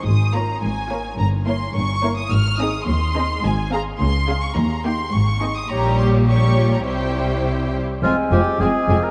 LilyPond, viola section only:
\new Staff \with { instrumentName = "Viola section" } { \time 2/4 \key aes \major \tempo 4 = 106 << { r8 f'8 r8 f'8 | r8 e'8 r8 e'8 | r8 ees'8 r8 ees'8 | \key f \minor r8 aes'8 r8 aes'8 |
r8 ees'8 r8 ees'8 | g'4 g'8 f'8 | e'4. r8 | r2 | } \\ { r8 bes8 r8 bes8 | r8 bes8 r8 bes8 | r8 c'8 r8 c'8 | r8 c'8 r8 des'8 |
r8 bes8 r8 c'8 | g4 g4 | g4. r8 | aes8 aes8 aes8 aes8 | } >> }